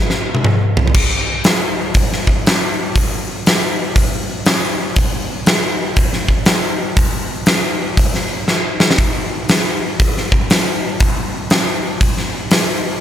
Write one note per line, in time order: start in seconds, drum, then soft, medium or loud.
0.10 snare soft
0.35 high tom medium
0.44 mid tom medium
0.77 floor tom loud
0.87 floor tom medium
0.94 kick loud
0.94 crash loud
1.44 snare loud
1.44 open hi-hat medium
1.94 kick medium
1.94 open hi-hat medium
2.13 snare soft
2.27 kick medium
2.46 snare loud
2.46 open hi-hat medium
2.96 kick medium
2.96 open hi-hat medium
3.46 snare loud
3.46 open hi-hat medium
3.96 kick medium
3.96 open hi-hat medium
4.46 snare loud
4.46 open hi-hat medium
4.96 kick loud
4.96 open hi-hat medium
5.46 snare loud
5.46 open hi-hat medium
5.96 kick loud
5.96 open hi-hat medium
6.13 snare soft
6.28 kick medium
6.46 snare loud
6.46 open hi-hat medium
6.97 kick loud
6.97 open hi-hat medium
7.46 snare loud
7.46 open hi-hat medium
7.97 kick loud
7.97 open hi-hat medium
8.14 snare soft
8.48 snare medium
8.80 snare medium
8.91 snare medium
8.98 kick loud
8.98 open hi-hat medium
9.49 snare loud
9.49 open hi-hat medium
10.00 kick loud
10.00 open hi-hat medium
10.17 snare soft
10.32 kick medium
10.50 snare loud
10.50 open hi-hat medium
11.00 kick loud
11.00 open hi-hat soft
11.50 snare loud
11.50 open hi-hat medium
12.01 kick loud
12.01 open hi-hat medium
12.17 snare soft
12.51 snare loud
12.51 open hi-hat medium